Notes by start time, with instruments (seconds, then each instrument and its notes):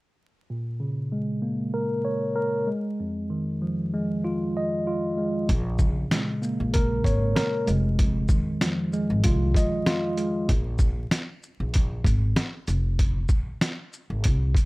0.50 tine electric piano A#2
0.80 tine electric piano C#3
1.12 tine electric piano G#3
1.42 tine electric piano A#3
1.74 tine electric piano A#4
2.05 tine electric piano C#5
2.36 tine electric piano A#4
2.67 tine electric piano G#3
3.00 tine electric piano F2
3.30 tine electric piano D#3
3.62 tine electric piano F3
3.93 tine electric piano G#3
4.24 tine electric piano F4
4.57 tine electric piano D#5
4.87 tine electric piano F4
5.17 tine electric piano G#3
5.49 upright bass A#1, tine electric piano A#2, kick, closed hi-hat
5.78 tine electric piano C#3, kick, shaker
6.11 tine electric piano G#3, snare, closed hi-hat
6.42 tine electric piano A#3, shaker
6.60 upright bass A#1
6.74 tine electric piano A#4, kick, closed hi-hat
7.04 upright bass G#1, tine electric piano C#5, kick, closed hi-hat, shaker
7.36 tine electric piano A#4, snare, closed hi-hat
7.67 upright bass F1, tine electric piano G#3, closed hi-hat, shaker
7.99 tine electric piano F2, kick, closed hi-hat
8.28 tine electric piano D#3, kick, shaker
8.61 tine electric piano F3, snare, closed hi-hat
8.93 tine electric piano G#3, shaker
9.10 upright bass G#1
9.24 upright bass C2, tine electric piano F4, kick, closed hi-hat
9.54 tine electric piano D#5, kick, closed hi-hat, shaker
9.86 tine electric piano F4, snare, closed hi-hat
10.17 tine electric piano G#3, closed hi-hat, shaker
10.49 upright bass A#1, kick, closed hi-hat
10.78 kick, shaker
11.11 snare, closed hi-hat
11.43 shaker
11.60 upright bass A#1
11.74 kick, closed hi-hat
12.04 upright bass G#1, kick, closed hi-hat, shaker
12.36 snare, closed hi-hat
12.68 upright bass F1, closed hi-hat, shaker
12.99 kick, closed hi-hat
13.28 kick, shaker
13.61 snare, closed hi-hat
13.93 shaker
14.10 upright bass G#1
14.24 upright bass C2, kick, closed hi-hat
14.55 kick, closed hi-hat, shaker